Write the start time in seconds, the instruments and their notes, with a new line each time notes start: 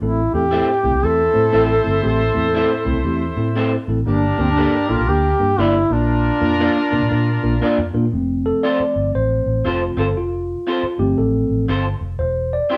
0.02 fingered electric bass A1, tine electric piano A2 A3 C4 E4 A4, duduk E4
0.34 fingered electric bass E2, tine electric piano A3 C4 E4 A4, duduk G4
0.51 tine electric piano A3 C4 E4 A4, clean electric guitar E4 A4 C5 E5
0.83 fingered electric bass C2, tine electric piano A3 C4 E4 G4
0.94 fingered electric bass C2
1.02 fingered electric bass E2, tine electric piano A3 C4 E4 A4, horn section E4 A4 C5, duduk A4
1.33 fingered electric bass A2, tine electric piano A3 C4 E4 C5
1.52 fingered electric bass A1, tine electric piano A3 C4 E4 C5, clean electric guitar E4 A4 C5 E5
1.84 fingered electric bass G1, tine electric piano A3 C4 E4 A4
2.02 fingered electric bass A1, tine electric piano A2 A3 C4 E4 G4, duduk A4
2.34 fingered electric bass E2, tine electric piano A3 C4 E4 A4
2.53 tine electric piano A3 C4 E4 A4, clean electric guitar E4 A4 C5 E5
2.85 fingered electric bass C2, tine electric piano A3 C4 E4 A4
3.04 fingered electric bass E2, tine electric piano A3 C4 E4 G4
3.36 fingered electric bass A2, tine electric piano A3 C4 E4 A4
3.56 tine electric piano A3 C4 E4 A4, clean electric guitar E4 A4 C5 E5
3.88 fingered electric bass A1, tine electric piano A3 C4 E4 A4
4.06 fingered electric bass G1, tine electric piano G2 A#3 D4 G4 A#4, horn section D4 G4 A#4, duduk D4
4.37 fingered electric bass D2, tine electric piano A#3 D4 G4 A#4, duduk C4
4.50 duduk D4
4.57 tine electric piano A#3 D4 G4 A4, clean electric guitar D4 G4 A#4 D5
4.89 fingered electric bass A#1, tine electric piano A#3 D4 G4 A4, duduk F4
4.99 fingered electric bass A#1
5.07 fingered electric bass D2, tine electric piano A#3 D4 G4 A#4, duduk G4
5.39 fingered electric bass G2, tine electric piano A#3 D4 G4 A#4
5.58 fingered electric bass G1, tine electric piano A#3 D4 G4 A#4, clean electric guitar D4 G4 A#4 D5, duduk E4
5.90 fingered electric bass A#1, tine electric piano A#2 A#3 D4 F4 A#4, horn section D4 F4 A#4, duduk D4
6.40 fingered electric bass F2, tine electric piano A#3 D4 F4 A#4
6.59 tine electric piano A#3 D4 F4 A#4, clean electric guitar D4 F4 A#4 D5
6.91 fingered electric bass C3, tine electric piano A#3 D4 F4 A#4
7.02 fingered electric bass A#2
7.10 fingered electric bass A#2, tine electric piano A#3 D4 F4 A#4
7.42 fingered electric bass A#1, tine electric piano A#3 D4 F4 A#4
7.61 tine electric piano A#3 D4 F4 A#4, clean electric guitar D4 F4 A#4 D5
7.78 fingered electric bass F2
7.93 fingered electric bass A#2, tine electric piano A#3 D4 F4 A#4
8.12 fingered electric bass F1, tine electric piano F3 A3 C4
8.46 tine electric piano A4
8.63 clean electric guitar C4 F4 A4 C5, tine electric piano D5
8.80 muted fingered electric bass stroke
8.96 fingered electric bass G1
9.14 fingered electric bass A1, tine electric piano C5
9.46 fingered electric bass A1
9.65 fingered electric bass F1, clean electric guitar C4 F4 A4 C5, tine electric piano F4
9.97 fingered electric bass G1, clean electric guitar C4 F4 A4 C5, tine electric piano A4
10.16 fingered electric bass F1, tine electric piano F4
10.67 clean electric guitar C4 F4 A4 C5, tine electric piano F4
10.83 muted fingered electric bass stroke
10.98 fingered electric bass G1, tine electric piano F3 A3 C4 G4
11.18 fingered electric bass A1, tine electric piano A4
11.50 fingered electric bass A1
11.68 fingered electric bass G1, clean electric guitar C4 F4 A4 C5
12.01 fingered electric bass F1
12.19 fingered electric bass E1, tine electric piano C5
12.53 tine electric piano D5
12.70 clean electric guitar C4 E4 G4 C5